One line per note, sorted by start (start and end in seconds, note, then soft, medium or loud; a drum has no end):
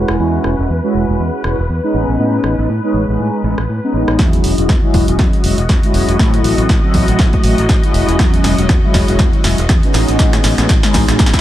0.00 0.17 G#3 medium
0.00 0.17 C#4 medium
0.00 0.17 E4 medium
0.00 0.17 F#4 loud
0.00 4.20 B4 medium
0.08 0.16 E1 medium
0.08 cross-stick medium
0.19 0.38 E2 medium
0.19 0.55 G#3 medium
0.19 0.55 C#4 medium
0.19 0.55 E4 medium
0.19 0.55 F#4 loud
0.44 0.54 E1 medium
0.44 cross-stick medium
0.58 0.66 E1 medium
0.58 0.68 G#3 medium
0.58 0.68 C#4 medium
0.58 0.68 E4 medium
0.58 0.69 F#4 medium
0.70 0.79 E2 medium
0.83 1.05 G#3 medium
0.83 1.05 C#4 medium
0.83 1.05 E4 medium
0.83 1.05 F#4 loud
0.95 1.04 E1 medium
1.08 1.16 E1 medium
1.08 1.42 G#3 medium
1.08 1.42 C#4 medium
1.08 1.42 E4 medium
1.08 1.42 F#4 medium
1.20 1.29 E2 medium
1.43 1.54 E1 medium
1.43 1.57 G#3 medium
1.43 1.57 C#4 medium
1.43 1.57 E4 medium
1.43 1.57 F#4 medium
1.43 cross-stick medium
1.59 1.66 E1 medium
1.69 1.79 E2 medium
1.83 2.16 G#3 medium
1.83 2.17 B3 medium
1.83 2.17 C#4 medium
1.83 2.17 D#4 loud
1.94 2.04 A1 medium
2.08 2.16 A1 medium
2.19 2.38 A2 medium
2.19 2.55 G#3 medium
2.19 2.55 B3 medium
2.19 2.55 C#4 medium
2.19 2.55 D#4 loud
2.44 2.54 A1 medium
2.44 cross-stick medium
2.58 2.66 A1 medium
2.58 2.68 G#3 medium
2.58 2.68 B3 medium
2.58 2.68 C#4 medium
2.58 2.68 D#4 medium
2.69 2.79 A2 medium
2.83 3.05 G#3 loud
2.83 3.05 B3 medium
2.83 3.05 C#4 medium
2.83 3.05 D#4 loud
2.94 3.04 A1 medium
3.07 3.16 A1 medium
3.07 3.41 G#3 medium
3.07 3.41 B3 medium
3.07 3.42 C#4 medium
3.07 3.42 D#4 medium
3.19 3.29 A2 medium
3.43 3.54 A1 loud
3.43 3.57 G#3 medium
3.43 3.57 B3 medium
3.43 3.57 C#4 medium
3.43 3.57 D#4 medium
3.58 3.66 A1 medium
3.58 cross-stick medium
3.69 3.79 A2 medium
3.83 4.17 G#3 medium
3.83 4.17 B3 medium
3.83 4.17 C#4 medium
3.83 4.17 D#4 loud
3.94 4.04 A1 medium
4.08 4.16 A1 medium
4.08 cross-stick medium
4.18 4.38 E2 loud
4.18 4.55 F#3 loud
4.18 4.55 G#3 medium
4.18 4.55 C#4 medium
4.18 4.55 E4 loud
4.18 11.41 F#4 medium
4.18 11.41 D#5 medium
4.18 kick loud
4.18 snare medium
4.33 closed hi-hat medium
4.44 4.54 E1 medium
4.44 open hi-hat loud
4.58 4.66 E1 medium
4.58 4.68 F#3 medium
4.58 4.68 G#3 medium
4.58 4.68 C#4 medium
4.58 4.68 E4 medium
4.58 closed hi-hat medium
4.69 4.79 E2 loud
4.69 kick loud
4.69 snare medium
4.83 5.05 F#3 medium
4.83 5.05 G#3 medium
4.83 5.05 C#4 medium
4.83 5.05 E4 loud
4.94 5.04 E1 medium
4.94 kick medium
4.94 open hi-hat medium
5.08 5.16 E1 medium
5.08 5.41 F#3 medium
5.08 5.41 G#3 medium
5.08 5.41 C#4 medium
5.08 5.42 E4 medium
5.08 closed hi-hat medium
5.19 5.29 E2 medium
5.19 kick loud
5.19 snare medium
5.33 closed hi-hat soft
5.44 5.54 E1 medium
5.44 5.57 F#3 medium
5.44 5.57 G#3 medium
5.44 5.57 C#4 medium
5.44 5.57 E4 medium
5.44 open hi-hat loud
5.44 shaker medium
5.58 5.66 E1 loud
5.58 closed hi-hat medium
5.69 5.79 E2 medium
5.69 kick loud
5.69 snare medium
5.83 6.17 F#3 medium
5.83 6.17 G#3 medium
5.83 6.17 C#4 medium
5.83 6.17 E4 loud
5.83 closed hi-hat soft
5.94 6.04 E1 medium
5.94 open hi-hat medium
5.94 shaker medium
6.08 6.16 E1 medium
6.08 closed hi-hat medium
6.19 6.38 A2 loud
6.19 6.55 F#3 loud
6.19 6.55 A3 medium
6.19 6.55 C4 medium
6.19 6.55 E4 loud
6.19 kick loud
6.19 snare medium
6.34 closed hi-hat medium
6.44 6.54 A1 medium
6.44 open hi-hat loud
6.44 shaker loud
6.58 6.66 A1 medium
6.58 6.68 F#3 medium
6.58 6.68 A3 medium
6.58 6.68 C4 medium
6.58 6.68 E4 medium
6.58 closed hi-hat medium
6.69 6.79 A2 medium
6.69 kick loud
6.69 snare medium
6.83 7.05 F#3 loud
6.83 7.05 A3 medium
6.83 7.05 C4 medium
6.83 7.05 E4 loud
6.94 7.04 A1 medium
6.94 kick medium
6.94 open hi-hat medium
6.94 shaker loud
7.08 7.16 A1 medium
7.08 7.41 F#3 medium
7.08 7.42 A3 medium
7.08 7.42 C4 medium
7.08 7.42 E4 medium
7.08 closed hi-hat medium
7.08 shaker medium
7.19 7.29 A2 medium
7.19 kick loud
7.19 snare medium
7.33 kick medium
7.33 closed hi-hat soft
7.43 7.54 A1 loud
7.43 7.57 F#3 medium
7.43 7.57 A3 medium
7.43 7.57 C4 medium
7.43 7.57 E4 medium
7.43 open hi-hat loud
7.43 shaker loud
7.58 7.66 A1 loud
7.58 closed hi-hat medium
7.58 shaker soft
7.69 kick loud
7.69 snare medium
7.83 8.17 F#3 loud
7.83 8.17 G#3 medium
7.83 8.17 C#4 medium
7.83 8.17 E4 loud
7.83 closed hi-hat soft
7.94 8.04 E1 loud
7.94 open hi-hat medium
7.94 shaker medium
8.08 8.16 E1 loud
8.08 closed hi-hat medium
8.08 shaker medium
8.19 8.38 E2 loud
8.19 8.55 F#3 loud
8.19 8.55 G#3 medium
8.19 8.55 C#4 medium
8.19 8.55 E4 loud
8.19 kick loud
8.19 snare medium
8.34 closed hi-hat medium
8.44 8.54 E1 medium
8.44 snare medium
8.44 open hi-hat loud
8.44 shaker loud
8.58 8.66 E1 medium
8.58 8.68 F#3 medium
8.58 8.68 G#3 medium
8.58 8.68 C#4 medium
8.58 8.69 E4 medium
8.58 closed hi-hat medium
8.58 shaker medium
8.69 8.79 E2 loud
8.69 kick loud
8.69 snare medium
8.83 9.05 F#3 loud
8.83 9.05 G#3 medium
8.83 9.05 C#4 medium
8.83 9.05 E4 loud
8.94 9.04 E1 medium
8.94 kick medium
8.94 snare medium
8.94 open hi-hat medium
8.94 shaker medium
9.08 9.16 E1 medium
9.08 9.42 F#3 medium
9.08 9.42 G#3 medium
9.08 9.42 C#4 medium
9.08 9.42 E4 medium
9.08 closed hi-hat medium
9.08 shaker medium
9.19 9.29 E2 medium
9.19 kick loud
9.19 snare medium
9.19 shaker soft
9.33 closed hi-hat soft
9.44 9.54 E1 loud
9.44 9.57 F#3 medium
9.44 9.57 G#3 medium
9.44 9.57 C#4 medium
9.44 9.58 E4 medium
9.44 snare medium
9.44 open hi-hat loud
9.44 shaker medium
9.58 9.66 E1 loud
9.58 closed hi-hat medium
9.58 shaker medium
9.69 9.79 E2 medium
9.69 kick loud
9.69 snare medium
9.69 shaker soft
9.83 10.17 G#3 medium
9.83 10.17 B3 medium
9.83 10.17 C#4 medium
9.83 10.17 D#4 loud
9.83 closed hi-hat medium
9.94 10.04 A1 loud
9.94 snare medium
9.94 open hi-hat loud
9.94 shaker medium
10.08 10.16 A1 loud
10.08 closed hi-hat medium
10.08 shaker medium
10.19 10.38 A2 loud
10.19 10.55 G#3 loud
10.19 10.55 B3 medium
10.19 10.55 C#4 medium
10.19 10.55 D#4 loud
10.19 kick loud
10.19 snare loud
10.19 shaker soft
10.33 snare medium
10.33 closed hi-hat medium
10.44 10.54 A1 medium
10.44 snare medium
10.44 open hi-hat loud
10.44 shaker loud
10.58 10.66 A1 loud
10.58 10.68 G#3 medium
10.58 10.68 B3 medium
10.58 10.69 C#4 medium
10.58 10.69 D#4 medium
10.58 snare medium
10.58 closed hi-hat medium
10.58 shaker medium
10.69 10.79 A2 loud
10.69 kick loud
10.69 snare loud
10.69 shaker soft
10.83 11.05 G#3 loud
10.83 11.05 B3 medium
10.83 11.05 C#4 medium
10.83 11.05 D#4 loud
10.83 snare medium
10.94 11.04 A1 medium
10.94 kick medium
10.94 snare medium
10.94 open hi-hat loud
10.94 shaker loud
11.08 11.16 A1 loud
11.08 11.41 G#3 medium
11.08 11.41 B3 medium
11.08 11.41 C#4 medium
11.08 11.41 D#4 medium
11.08 snare medium
11.08 closed hi-hat medium
11.08 shaker medium
11.19 11.29 A2 medium
11.19 kick loud
11.19 snare loud
11.19 swell medium
11.19 shaker soft
11.26 snare medium
11.34 kick medium
11.34 snare medium
11.34 closed hi-hat soft